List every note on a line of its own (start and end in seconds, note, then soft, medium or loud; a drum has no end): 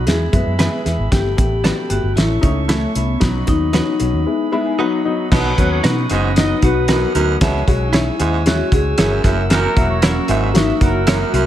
0.00 2.13 B5 medium
0.06 0.27 E2 medium
0.06 0.25 G#3 medium
0.06 0.26 B3 medium
0.06 0.25 E4 medium
0.06 1.10 G#4 medium
0.06 0.34 G#4 medium
0.06 1.11 E5 medium
0.06 snare loud
0.06 closed hi-hat medium
0.33 0.43 F#2 medium
0.33 0.52 G#3 medium
0.33 0.52 B3 medium
0.33 0.52 E4 medium
0.33 0.83 B4 medium
0.33 kick medium
0.33 closed hi-hat medium
0.46 0.67 F#2 medium
0.59 0.78 G#3 medium
0.59 0.78 B3 medium
0.59 0.78 E4 medium
0.59 0.72 E4 medium
0.59 0.72 G#4 medium
0.59 0.73 B4 medium
0.59 snare loud
0.59 closed hi-hat medium
0.85 0.96 E2 medium
0.85 1.04 G#3 medium
0.85 1.04 B3 medium
0.85 1.04 E4 medium
0.85 snare soft
0.85 closed hi-hat medium
0.99 1.09 G#1 medium
1.11 1.33 G1 medium
1.11 1.30 A3 medium
1.11 1.30 B3 medium
1.11 1.30 G4 medium
1.11 1.94 G4 medium
1.11 3.19 A4 medium
1.11 2.16 G5 medium
1.11 kick loud
1.11 snare loud
1.11 closed hi-hat loud
1.37 1.69 A1 medium
1.37 1.56 A3 medium
1.37 1.56 B3 medium
1.37 1.56 G4 medium
1.37 kick medium
1.37 closed hi-hat medium
1.64 1.83 A3 medium
1.64 1.83 B3 medium
1.64 1.77 D4 medium
1.64 1.83 F#4 medium
1.64 1.78 A4 medium
1.64 1.78 B4 medium
1.64 snare loud
1.64 closed hi-hat medium
1.89 2.01 G1 medium
1.89 2.09 A3 medium
1.89 2.09 B3 medium
1.89 2.18 F#4 medium
1.89 2.09 G4 medium
1.89 closed hi-hat medium
2.03 2.14 G1 medium
2.16 2.37 A1 medium
2.16 2.35 A3 medium
2.16 2.35 C#4 medium
2.16 2.43 E4 medium
2.16 2.35 E4 medium
2.16 3.21 E5 medium
2.16 3.21 C#6 medium
2.16 snare loud
2.16 closed hi-hat medium
2.41 2.85 C#2 medium
2.41 2.61 A3 medium
2.41 2.61 C#4 medium
2.41 2.70 C#4 medium
2.41 2.61 D#4 medium
2.41 kick medium
2.41 closed hi-hat medium
2.68 2.88 A3 medium
2.68 2.96 A3 medium
2.68 2.88 C#4 medium
2.68 2.88 E4 medium
2.68 2.82 E4 medium
2.68 2.83 A4 medium
2.68 2.83 C#5 medium
2.68 snare loud
2.68 closed hi-hat medium
2.95 3.16 C2 medium
2.95 3.14 A3 medium
2.95 3.23 B3 medium
2.95 3.14 C#4 medium
2.95 3.14 E4 medium
2.95 closed hi-hat medium
3.20 3.42 B1 medium
3.20 3.40 F#3 medium
3.20 3.40 B3 medium
3.20 3.50 C#4 medium
3.20 3.40 D#4 medium
3.20 4.26 F#4 medium
3.20 4.25 D#5 medium
3.20 5.29 B5 medium
3.20 kick loud
3.20 snare loud
3.20 closed hi-hat medium
3.47 3.79 D#2 medium
3.47 3.67 F#3 medium
3.47 3.66 B3 medium
3.47 3.67 D#4 medium
3.47 5.02 D#4 medium
3.47 kick medium
3.47 closed hi-hat medium
3.73 3.92 F#3 medium
3.73 3.93 B3 medium
3.73 3.93 C#4 medium
3.73 3.87 D#4 medium
3.73 3.87 F#4 medium
3.73 3.88 B4 medium
3.73 snare loud
3.73 closed hi-hat medium
3.99 4.11 B1 medium
3.99 4.19 F#3 medium
3.99 4.19 B3 medium
3.99 4.19 C#4 medium
3.99 closed hi-hat medium
4.14 4.24 D#2 medium
4.26 4.46 G#3 medium
4.26 4.46 B3 medium
4.26 4.46 E4 medium
4.26 4.79 G#4 medium
4.26 4.78 B4 medium
4.52 4.72 G#3 loud
4.52 4.71 B3 medium
4.52 4.72 E4 loud
4.52 4.65 B5 medium
4.66 4.78 G#5 medium
4.78 4.98 F#3 loud
4.78 4.98 B3 medium
4.78 4.92 D#4 medium
4.78 4.98 D#4 loud
4.78 5.31 F#4 medium
4.78 4.92 F#4 medium
4.78 4.93 B4 medium
4.78 5.31 D#5 medium
4.78 5.04 F#5 medium
5.05 5.24 F#3 medium
5.05 5.24 B3 medium
5.05 5.24 D#4 medium
5.05 5.30 D#5 medium
5.31 5.52 B1 loud
5.31 5.53 B2 medium
5.31 5.51 F#3 loud
5.31 5.51 B3 loud
5.31 5.69 D#4 loud
5.31 5.51 D#4 loud
5.31 5.69 F#4 loud
5.31 7.39 B4 medium
5.31 5.69 B4 loud
5.31 7.39 F#5 medium
5.31 7.39 D#6 medium
5.31 kick loud
5.31 snare loud
5.31 crash loud
5.58 5.79 D#2 medium
5.58 5.77 F#3 medium
5.58 5.77 B3 medium
5.58 5.77 C#4 loud
5.58 kick medium
5.58 closed hi-hat medium
5.71 5.81 F#4 medium
5.71 5.81 A4 medium
5.71 5.81 C#5 medium
5.79 5.85 D#4 medium
5.84 6.05 B2 loud
5.84 6.03 F#3 medium
5.84 6.03 B3 medium
5.84 6.39 C#4 medium
5.84 5.97 D#4 medium
5.84 6.05 D#4 medium
5.84 6.05 F#4 medium
5.84 5.97 F#4 medium
5.84 6.05 B4 medium
5.84 5.98 B4 loud
5.84 snare loud
5.84 closed hi-hat medium
6.10 6.52 F#1 medium
6.10 6.32 G#2 medium
6.10 6.29 F#3 medium
6.10 6.29 B3 medium
6.10 6.29 D#4 medium
6.10 6.31 F#4 medium
6.10 6.31 B4 medium
6.10 6.31 D#5 medium
6.10 closed hi-hat medium
6.36 6.56 F#3 medium
6.36 6.56 B3 medium
6.36 6.56 D#4 loud
6.36 6.64 D#4 loud
6.36 6.57 F#4 medium
6.36 6.57 B4 medium
6.36 6.57 D#5 loud
6.36 snare loud
6.36 closed hi-hat medium
6.62 7.04 B1 medium
6.62 6.81 F#3 medium
6.62 6.82 B3 medium
6.62 7.12 D#4 medium
6.62 7.12 F#4 medium
6.62 6.82 F#4 medium
6.62 6.90 F#4 loud
6.62 7.12 B4 medium
6.62 kick medium
6.62 closed hi-hat medium
6.88 7.10 F#2 medium
6.88 7.08 F#3 medium
6.88 7.08 B3 medium
6.88 7.02 D#4 medium
6.88 7.08 D#4 medium
6.88 7.02 F#4 medium
6.88 7.26 F#4 loud
6.88 7.02 B4 medium
6.88 snare loud
6.88 closed hi-hat medium
7.15 7.36 D2 medium
7.15 7.36 F#2 medium
7.15 7.34 F#3 medium
7.15 7.34 B3 medium
7.15 7.34 D#4 medium
7.15 closed hi-hat medium
7.41 7.62 C#2 loud
7.41 7.62 B2 medium
7.41 7.60 G#3 loud
7.41 7.60 C#4 loud
7.41 7.60 E4 loud
7.41 9.22 C#5 medium
7.41 9.23 G#5 medium
7.41 9.22 E6 medium
7.41 kick loud
7.41 snare loud
7.41 closed hi-hat loud
7.68 8.09 B1 medium
7.68 7.86 G#3 medium
7.68 7.87 C#4 medium
7.68 7.87 F#4 loud
7.68 kick medium
7.68 closed hi-hat medium
7.88 7.94 D#4 medium
7.93 8.12 G#3 medium
7.93 8.12 C#4 medium
7.93 8.06 E4 medium
7.93 8.12 E4 medium
7.93 8.48 E4 medium
7.93 8.07 G#4 medium
7.93 8.07 C#5 medium
7.93 snare loud
7.93 closed hi-hat medium
8.20 8.61 D#2 medium
8.20 8.41 G#2 medium
8.20 8.39 G#3 medium
8.20 8.39 C#4 medium
8.20 8.39 E4 medium
8.20 closed hi-hat medium
8.46 8.65 G#3 medium
8.46 8.65 C#4 medium
8.46 8.65 E4 loud
8.46 8.71 F#4 loud
8.46 snare loud
8.46 closed hi-hat medium
8.72 8.93 C#2 medium
8.72 8.91 G#3 medium
8.72 8.91 C#4 medium
8.72 8.91 F#4 medium
8.72 9.21 G#4 loud
8.72 kick medium
8.72 closed hi-hat medium
8.98 9.19 G1 loud
8.98 9.19 F#2 medium
8.98 9.17 G#3 medium
8.98 9.17 C#4 medium
8.98 9.11 E4 medium
8.98 9.17 E4 medium
8.98 9.11 G#4 medium
8.98 9.12 C#5 medium
8.98 snare loud
8.98 closed hi-hat loud
9.23 9.65 F#1 medium
9.23 9.45 F#2 medium
9.23 9.66 F#3 medium
9.23 9.31 G#3 medium
9.23 9.66 E4 medium
9.23 11.46 A#4 medium
9.23 11.46 F#5 medium
9.23 11.46 E6 medium
9.23 kick loud
9.23 snare soft
9.23 closed hi-hat medium
9.31 9.69 A#3 medium
9.50 9.72 F#2 medium
9.50 9.87 E4 loud
9.50 9.87 F#4 loud
9.50 9.87 A#4 loud
9.50 snare loud
9.50 closed hi-hat loud
9.76 10.18 E1 medium
9.76 9.95 F#3 loud
9.76 9.95 A#3 medium
9.76 9.95 E4 loud
9.76 kick medium
9.76 closed hi-hat medium
9.89 10.00 F#4 medium
9.89 10.00 A#4 medium
9.89 10.00 C#5 medium
10.02 10.22 F#3 medium
10.02 10.21 A#3 medium
10.02 10.24 E4 loud
10.02 10.16 E4 medium
10.02 10.21 F#4 medium
10.02 10.24 F#4 medium
10.02 10.24 A#4 loud
10.02 10.16 A#4 medium
10.02 10.16 C#5 loud
10.02 snare loud
10.02 closed hi-hat loud
10.06 10.58 C#4 medium
10.28 10.70 G#1 medium
10.28 10.50 G#2 medium
10.28 10.48 F#3 medium
10.28 10.48 A#3 medium
10.28 10.48 E4 medium
10.28 10.49 A#4 medium
10.28 10.49 C#5 medium
10.28 10.49 E5 medium
10.28 closed hi-hat medium
10.54 10.73 F#3 medium
10.54 10.73 A#3 medium
10.54 10.83 D#4 medium
10.54 10.73 F#4 loud
10.54 10.76 A#4 medium
10.54 10.76 C#5 medium
10.54 10.76 E5 loud
10.54 snare loud
10.54 closed hi-hat medium
10.81 11.23 F#1 medium
10.81 11.00 F#3 medium
10.81 11.00 A#3 medium
10.81 11.00 E4 medium
10.81 11.31 E4 medium
10.81 11.31 F#4 medium
10.81 10.95 F#4 loud
10.81 11.31 A#4 loud
10.81 kick medium
10.81 closed hi-hat medium
11.07 11.29 F#2 medium
11.07 11.26 F#3 medium
11.07 11.26 A#3 medium
11.07 11.20 E4 medium
11.07 11.26 E4 medium
11.07 11.45 F#4 medium
11.07 11.21 A#4 medium
11.07 11.21 C#5 loud
11.07 snare loud
11.07 closed hi-hat loud
11.33 11.46 C2 medium
11.33 11.46 F#2 medium
11.33 11.46 F#3 medium
11.33 11.46 A#3 medium
11.33 11.46 E4 medium
11.33 closed hi-hat medium